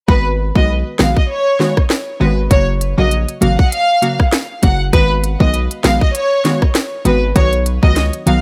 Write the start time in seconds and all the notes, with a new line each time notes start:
0.08 G#1 D#3 G#3 B3 F#4 B4, kick
0.55 B1 D#3 G#3 B3 F#4 D#5, kick
0.99 A#1 D#3 G#3 B3 F#4 F5, cross-stick, snare
1.17 D#5, kick
1.29 C#5
1.60 D#3 G#3 B3 F#4, snare
1.77 kick, cross-stick
1.90 cross-stick, snare
2.20 G#1 D#3 G#3 B3 F#4 B4
2.50 F#1 C#3 F#3 A#3 F#4 C#5, kick, closed hi-hat
2.81 closed hi-hat
2.97 A#1 C#3 F#3 A#3 F#4 D#5
3.11 closed hi-hat
3.29 closed hi-hat
3.41 G#1 C#3 F#3 A#3 F#4 F5, closed hi-hat
3.58 F#5, kick
3.72 F5, closed hi-hat
4.02 C#3 F#3 A#3 F#4, closed hi-hat
4.20 kick, cross-stick
4.33 cross-stick, snare, closed hi-hat
4.62 F#1 C#3 F#3 A#3 F#4 F#5, kick, closed hi-hat
4.93 G#1 D#3 G#3 B3 F#4 B4, kick, closed hi-hat
5.24 closed hi-hat
5.40 B1 D#3 G#3 B3 F#4 D#5, kick
5.54 closed hi-hat
5.71 closed hi-hat
5.84 A#1 D#3 G#3 B3 F#4 F5, cross-stick, snare, closed hi-hat
6.01 D#5, kick
6.14 C#5, closed hi-hat
6.44 D#3 G#3 B3 F#4, snare, closed hi-hat
6.62 kick, cross-stick
6.75 cross-stick, snare, closed hi-hat
7.05 G#1 D#3 G#3 B3 F#4 B4, closed hi-hat
7.35 B1 D#3 F#3 B3 F#4 C#5, kick, closed hi-hat
7.53 closed hi-hat
7.66 closed hi-hat
7.83 C#2 D#3 F#3 B3 F#4 D#5, kick
7.96 snare, closed hi-hat
8.13 closed hi-hat
8.26 B1 D#3 F#3 B3 F#4 F5, closed hi-hat